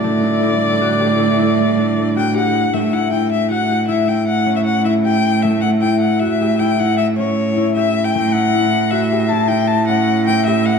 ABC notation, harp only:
X:1
M:7/4
L:1/8
Q:1/4=155
K:Amix
V:1 name="Harp"
A, E E2 F G E E2 D2 F G2 | A, E E2 F G E E2 C2 E G2 | A, E E2 F G E E2 C2 E G2 | A, E E2 F G E E2 C2 E G2 |]